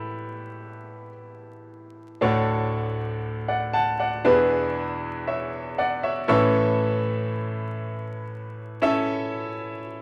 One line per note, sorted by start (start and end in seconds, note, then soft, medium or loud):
0.00 2.17 A2 medium
0.00 2.17 E3 medium
0.00 2.23 E4 medium
0.00 2.23 G4 medium
0.00 2.22 A4 medium
0.00 1.10 B4 medium
0.00 2.22 C#5 medium
2.21 4.21 D2 medium
2.21 4.21 A2 medium
2.21 3.18 D4 medium
2.21 3.18 F#4 medium
2.21 3.18 A4 medium
2.21 2.72 C#5 medium
3.48 3.73 D5 soft
3.48 3.72 F#5 medium
3.73 3.98 F#5 medium
3.73 3.98 A5 medium
3.99 4.48 D5 soft
3.99 4.48 F#5 medium
4.25 6.24 E2 medium
4.25 6.24 B2 medium
4.25 6.18 D4 medium
4.25 6.18 E4 medium
4.25 4.31 G4 medium
4.25 6.18 B4 medium
4.32 6.21 G#4 medium
5.27 5.75 C#5 soft
5.27 5.75 E5 medium
5.78 6.02 D5 medium
5.78 6.02 F#5 medium
6.03 6.28 C#5 medium
6.03 6.28 E5 medium
6.28 10.02 A2 medium
6.28 10.02 E3 medium
6.28 8.21 C#4 medium
6.28 8.21 E4 medium
6.28 8.22 A4 medium
6.28 8.22 C#5 medium
6.28 8.22 E5 medium
8.82 10.02 C#4 medium
8.82 10.02 E4 medium
8.82 10.02 A4 medium
8.82 10.02 C#5 medium
8.82 10.02 E5 medium